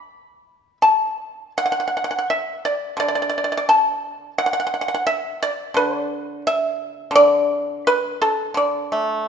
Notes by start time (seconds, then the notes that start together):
Already playing: B5
0.82 A5
1.58 F#5
1.66 F#5
1.72 F#5
1.80 F#5
1.88 F#5
1.97 F#5
2.04 F#5
2.11 F#5
2.19 F#5
2.30 E5
2.65 D5
2.97 D3 D5
3.08 D5
3.15 D5
3.22 D5
3.30 D5
3.38 D5
3.44 D5
3.52 D5
3.57 D5
3.69 A5
4.38 F#5
4.46 F#5
4.53 F#5
4.60 F#5
4.67 F#5
4.74 F#5
4.81 F#5
4.88 F#5
4.94 F#5
5.07 E5
5.43 D5
5.74 D3 B4
5.98 D5
6.47 E5
7.11 D3
7.16 D5
7.87 B4
8.22 A4
8.54 D3 D5
8.92 A3